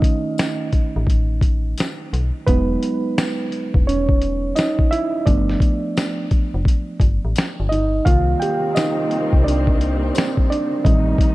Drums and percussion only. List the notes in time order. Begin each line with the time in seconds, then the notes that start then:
0.02 kick, closed hi-hat
0.38 snare, closed hi-hat, tambourine
0.73 kick, closed hi-hat
1.07 kick, closed hi-hat
1.41 kick, closed hi-hat
1.78 snare, closed hi-hat, tambourine
2.14 closed hi-hat
2.47 kick, closed hi-hat
2.83 closed hi-hat
3.18 snare, closed hi-hat, tambourine
3.52 closed hi-hat
3.74 kick
3.89 closed hi-hat
4.09 kick
4.22 closed hi-hat
4.56 snare, closed hi-hat, tambourine
4.79 kick
4.93 closed hi-hat
5.27 kick, closed hi-hat
5.49 snare
5.60 kick, closed hi-hat
5.97 snare, closed hi-hat, tambourine
6.31 kick, closed hi-hat
6.65 kick, closed hi-hat
7.00 kick, closed hi-hat
7.36 snare, closed hi-hat, tambourine
7.72 closed hi-hat
8.06 kick, closed hi-hat
8.42 closed hi-hat
8.76 snare, closed hi-hat, tambourine
9.11 closed hi-hat
9.33 kick
9.48 closed hi-hat
9.67 kick
9.81 closed hi-hat
10.15 snare, closed hi-hat, tambourine
10.37 kick
10.52 closed hi-hat
10.85 kick, closed hi-hat
11.18 kick, closed hi-hat